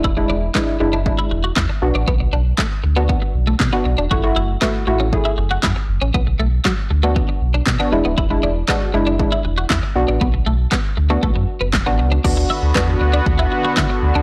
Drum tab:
CC |--------|--------|--------|--------|
CP |--x---x-|--x---x-|--x---x-|--x---x-|
SD |--o---o-|--o---o-|--o---o-|--o---o-|
BD |o-o-o-o-|o-o-o-o-|o-o-o-o-|o-o-o-o-|

CC |--------|--------|x-------|
CP |--x---x-|--x---x-|--x---x-|
SD |--o---o-|--o---o-|--o---o-|
BD |o-o-o-o-|o-o-o-o-|o-o-o-o-|